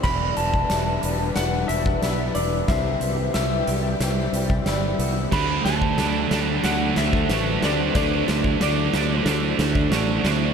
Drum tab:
CC |x---------------|----------------|x---------------|----------------|
HH |--x-x-x-x-x-x-x-|x-x-x-x-x-x-x-x-|--x-x-x-x-x-x-x-|x-x-x-x-x-x-x-x-|
SD |o---o---o---o---|o---o---o---o---|o-o-o-o-o-o-o-o-|o-o-o-o-o-o-o-o-|
BD |o--o-------o----|o----------o----|o--o-------o----|o--o-------o----|